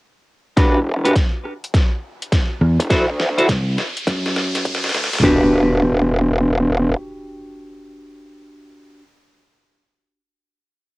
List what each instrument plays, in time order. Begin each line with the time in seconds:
0.57 wobble bass E1, clean electric guitar D4 F#4 G4 B4, kick, cross-stick, snare, closed hi-hat, riser
1.05 clean electric guitar D4 F#4 G4 B4, closed hi-hat
1.15 kick, snare, closed hi-hat
1.45 cross-stick
1.64 closed hi-hat
1.74 kick, snare, closed hi-hat
2.22 closed hi-hat
2.32 kick, snare, closed hi-hat
2.61 fingered electric bass E2, cross-stick
2.80 wobble bass E1, closed hi-hat
2.90 wobble bass D2, clean electric guitar E4 F#4 A4 C5, kick, snare, closed hi-hat
3.20 snare
3.38 clean electric guitar E4 F#4 A4 C5, closed hi-hat
3.49 fingered electric bass C2, kick, snare, closed hi-hat
3.78 snare
3.97 closed hi-hat
4.07 fingered electric bass F#2, kick, snare, closed hi-hat
4.26 snare
4.36 snare
4.55 snare, closed hi-hat
4.65 kick, closed hi-hat
4.75 snare
4.84 snare
4.89 snare
4.95 fingered electric bass D2, snare
5.04 snare
5.13 fingered electric bass D2, snare, closed hi-hat
5.19 snare
5.23 wobble bass E1, clean electric guitar D4 F#4 G4 B4, snare, floor tom, impact